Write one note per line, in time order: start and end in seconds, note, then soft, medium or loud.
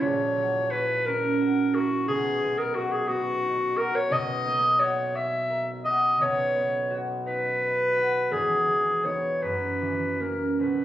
0.00 2.11 A#1 medium
0.00 2.11 A#2 medium
0.00 1.06 C#4 medium
0.00 0.71 E4 medium
0.00 0.72 C#5 loud
0.36 4.26 F#3 medium
0.71 1.73 E4 medium
0.71 1.07 B4 loud
1.06 2.11 C#4 medium
1.06 1.76 A#4 loud
1.41 2.75 F#4 medium
1.74 2.11 E4 medium
1.74 2.07 F#4 loud
2.08 4.09 B1 medium
2.08 4.09 B2 medium
2.08 2.60 G#4 loud
2.43 3.08 B3 medium
2.58 2.76 A#4 loud
2.75 2.93 F#4 medium
2.75 3.75 F#4 medium
2.92 3.09 G#4 medium
3.08 4.14 B3 medium
3.08 3.79 F#4 loud
3.43 4.14 D#4 medium
3.76 4.78 F#4 medium
3.76 3.97 A#4 loud
3.95 4.14 C#5 loud
4.10 6.18 B1 medium
4.10 6.20 B2 medium
4.10 4.81 D#5 loud
4.46 6.23 A#3 medium
4.79 5.84 F#4 medium
4.79 5.17 C#5 loud
5.14 6.23 C#5 medium
5.14 5.68 E5 loud
5.50 6.23 A#4 medium
5.85 6.89 F#4 medium
5.85 6.20 D#5 loud
6.19 8.34 B1 medium
6.19 8.34 B2 medium
6.19 6.98 C#5 loud
6.55 9.03 B3 medium
6.90 7.95 F#4 medium
7.26 9.03 D#4 medium
7.26 8.34 B4 loud
7.61 9.46 B4 medium
7.96 8.34 F#4 medium
8.31 9.45 E1 medium
8.31 9.45 E2 medium
8.31 9.07 G#4 medium
8.67 9.45 E3 soft
9.04 9.45 B3 soft
9.04 9.46 D#4 soft
9.04 9.44 C#5 medium
9.42 10.63 F#2 medium
9.42 10.22 B4 medium
9.81 10.64 E3 soft
10.20 10.64 A#3 soft
10.20 10.64 C#4 soft
10.20 10.60 A#4 medium
10.59 10.85 B1 soft
10.59 10.85 B2 medium
10.59 10.85 B4 medium